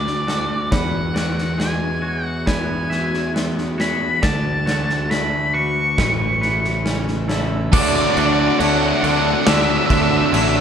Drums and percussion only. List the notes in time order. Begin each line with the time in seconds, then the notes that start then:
0.07 snare
0.28 snare
0.72 kick, snare
1.16 snare
1.38 snare
1.60 snare
2.47 kick, snare
2.91 snare
3.14 snare
3.36 snare
3.58 snare
3.80 snare
4.23 kick, snare
4.67 snare
4.89 snare
5.11 snare
5.98 kick, snare
6.42 snare
6.64 snare
6.86 snare
7.08 snare
7.29 snare
7.73 kick, crash
8.17 crash
8.60 crash
9.04 crash
9.47 snare, crash
9.90 kick, crash
10.34 crash